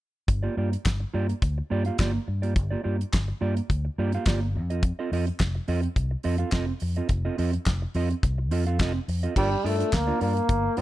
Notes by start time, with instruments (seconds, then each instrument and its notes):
0.28 fingered electric bass G1, muted clean electric guitar stroke, kick, closed hi-hat
0.43 clean electric guitar A#3 F4 G4 D5
0.57 fingered electric bass G2, clean electric guitar A#3 F4 G4 D5
0.73 closed hi-hat
0.85 fingered electric bass G1, kick, snare, clap, closed hi-hat
1.00 muted clean electric guitar stroke
1.14 fingered electric bass G2, clean electric guitar A#3 F4 G4 D5
1.29 muted clean electric guitar stroke, closed hi-hat
1.42 fingered electric bass D2, muted clean electric guitar stroke, kick, closed hi-hat
1.58 muted clean electric guitar stroke
1.70 fingered electric bass G2, clean electric guitar A#3 F4 G4 D5
1.85 clean electric guitar A#3 F4 G4 F5, closed hi-hat
1.98 fingered electric bass G1, clean electric guitar A#3 F4 G4 D5, kick, snare, clap, closed hi-hat
2.14 muted clean electric guitar stroke
2.28 fingered electric bass G2, muted clean electric guitar stroke
2.42 clean electric guitar A#3 F4 G4 D5, closed hi-hat
2.56 fingered electric bass G1, kick, closed hi-hat
2.71 clean electric guitar A#3 F4 G4 D5
2.83 fingered electric bass G2, clean electric guitar A#3 F4 G4 D5
2.99 muted clean electric guitar stroke, closed hi-hat
3.13 fingered electric bass G1, kick, snare, clap, closed hi-hat
3.28 muted clean electric guitar stroke
3.41 fingered electric bass G2, clean electric guitar A#3 F4 G4 D5
3.57 muted clean electric guitar stroke, closed hi-hat
3.70 fingered electric bass D2, muted clean electric guitar stroke, kick, closed hi-hat
3.85 muted clean electric guitar stroke
3.98 fingered electric bass G2, clean electric guitar A#3 F4 G4 D5
4.12 clean electric guitar A#3 F4 G4 F5, closed hi-hat
4.25 fingered electric bass G1, clean electric guitar A#3 F4 G4 D5, kick, snare, clap, closed hi-hat
4.42 muted clean electric guitar stroke
4.55 fingered electric bass F2, muted clean electric guitar stroke
4.70 clean electric guitar C4 F4 A4 D#5, closed hi-hat
4.83 muted clean electric guitar stroke, kick, closed hi-hat
4.99 clean electric guitar C4 F4 A4 D#5
5.12 fingered electric bass F2, clean electric guitar C4 F4 A4 D#5, open hi-hat
5.27 muted clean electric guitar stroke, closed hi-hat
5.39 fingered electric bass F1, kick, snare, clap, closed hi-hat
5.55 muted clean electric guitar stroke
5.68 fingered electric bass F2, clean electric guitar C4 F4 A4 D#5, open hi-hat
5.83 muted clean electric guitar stroke, closed hi-hat
5.96 fingered electric bass C2, muted clean electric guitar stroke, kick, closed hi-hat
6.11 muted clean electric guitar stroke
6.23 fingered electric bass F2, clean electric guitar C4 F4 A4 D#5, open hi-hat
6.38 clean electric guitar C4 F4 A4 F5, closed hi-hat
6.51 fingered electric bass F1, clean electric guitar C4 F4 A4 D#5, kick, snare, clap, closed hi-hat
6.68 muted clean electric guitar stroke
6.80 fingered electric bass F2, muted clean electric guitar stroke, open hi-hat
6.96 clean electric guitar C4 F4 A4 D#5, closed hi-hat
7.09 fingered electric bass F1, kick, closed hi-hat
7.25 clean electric guitar C4 F4 A4 D#5
7.38 fingered electric bass F2, clean electric guitar C4 F4 A4 D#5, open hi-hat
7.53 muted clean electric guitar stroke, closed hi-hat
7.66 fingered electric bass F1, kick, snare, clap, closed hi-hat
7.82 muted clean electric guitar stroke
7.94 fingered electric bass F2, clean electric guitar C4 F4 A4 D#5, open hi-hat
8.11 muted clean electric guitar stroke, closed hi-hat
8.23 fingered electric bass C2, muted clean electric guitar stroke, kick, closed hi-hat
8.38 muted clean electric guitar stroke
8.51 fingered electric bass F2, clean electric guitar C4 F4 A4 D#5, open hi-hat
8.66 clean electric guitar C4 F4 A4 F5, closed hi-hat
8.79 fingered electric bass F1, clean electric guitar C4 F4 A4 D#5, kick, snare, clap, closed hi-hat
8.95 muted clean electric guitar stroke
9.08 fingered electric bass F2, muted clean electric guitar stroke, open hi-hat
9.23 clean electric guitar C4 F4 A4 D#5, closed hi-hat
9.36 fingered electric bass G1, trombone G3, clean electric guitar D4 F4 A#4 D5, kick, crash
9.52 muted clean electric guitar stroke
9.64 fingered electric bass G2, trombone A3, clean electric guitar D4 F4 A#4 D5, open hi-hat
9.78 clean electric guitar D4 F4 A#4 D5, closed hi-hat
9.92 fingered electric bass D2, trombone A#3, kick, snare, clap, closed hi-hat
10.07 clean electric guitar D4 F4 A#4 D5
10.20 fingered electric bass G2, trombone A#3, clean electric guitar D4 F4 A#4 D5, open hi-hat
10.36 muted clean electric guitar stroke, closed hi-hat
10.49 fingered electric bass G1, muted clean electric guitar stroke, kick, closed hi-hat
10.63 muted clean electric guitar stroke
10.77 fingered electric bass G2, clean electric guitar D4 F4 A#4 D5, open hi-hat